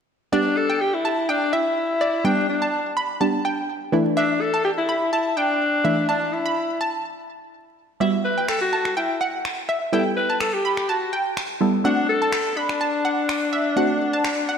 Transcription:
0.32 G3 B3 D4 G4 D5
0.57 A4
0.70 G5
0.81 G4
0.94 E4
1.05 A5
1.29 D4 G5
1.53 E4 E5
2.01 D5
2.24 G3 B3 D4 G4 G5
2.49 D4
2.62 A5
2.97 B5
3.21 G3 B3 D4 G4 A5
3.45 G5
3.92 E3 A3 D4 E4
4.17 D4 E5
4.41 A4
4.54 A5
4.65 G4
4.78 E4
4.89 B5
5.13 E4 A5
5.37 D4 G5
5.84 E3 A3 D4 E4 E5
6.09 D4 A5
6.33 E4
6.46 B5
6.81 A5
8.00 G3 B3 E4 F#4 E5
8.25 B4
8.38 G5
8.48 A4, finger snap
8.62 F#4
8.73 A5
8.85 finger snap
8.97 E4 G5
9.21 F#5
9.45 finger snap
9.69 E5
9.93 G3 B3 E4 A4 G5
10.17 B4
10.30 A5
10.40 A4, finger snap
10.54 G4
10.65 B5
10.77 finger snap
10.89 F#4 A5
11.13 G5
11.37 finger snap
11.61 G3 B3 E4 A4
11.84 A3 C4 D4 F#4 F#5
12.09 A4
12.22 A5
12.33 finger snap
12.57 D4 B5
12.69 finger snap
12.81 A5
13.05 F#5
13.29 finger snap
13.53 E5
13.76 A3 C4 D4 F#4 F#5
14.13 A5
14.25 finger snap
14.49 F#5

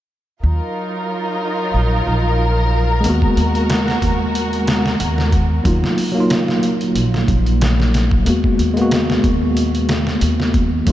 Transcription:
0.43 D#2 F#3 D#4 F4 A#4
1.74 A#1
2.07 A#1
3.01 G#3 A#3, closed hi-hat
3.05 D#2 B3 F#4
3.09 F#4
3.22 kick
3.37 D#2, closed hi-hat
3.55 closed hi-hat
3.70 snare, closed hi-hat
3.88 snare
4.02 D#2, kick, closed hi-hat
4.35 closed hi-hat
4.53 closed hi-hat
4.67 snare, closed hi-hat
4.86 snare
5.00 D#2, closed hi-hat
5.18 snare
5.32 kick, closed hi-hat
5.64 D#2 F#3 A#3 D#4 F4, kick, closed hi-hat
5.84 snare
5.98 open hi-hat
6.12 F#3 A#3
6.17 D#4 F4
6.30 snare, closed hi-hat
6.48 snare
6.63 closed hi-hat
6.81 closed hi-hat
6.95 A#1, closed hi-hat
7.14 snare
7.28 A#1, kick, closed hi-hat
7.46 closed hi-hat
7.61 snare, closed hi-hat
7.80 snare
7.94 snare, closed hi-hat
8.11 kick
8.25 D#2 G#3 A#3 B3, closed hi-hat
8.30 F#4
8.44 kick
8.59 D#2, closed hi-hat
8.74 G#3 A#3, closed hi-hat
8.79 B3 F#4
8.91 snare, closed hi-hat
9.10 snare
9.24 D#2, kick, closed hi-hat
9.57 closed hi-hat
9.75 closed hi-hat
9.89 snare, closed hi-hat
10.07 snare
10.21 D#2, closed hi-hat
10.40 snare
10.54 kick, closed hi-hat
10.86 D#2 F#3 A#3 D#4, kick, closed hi-hat

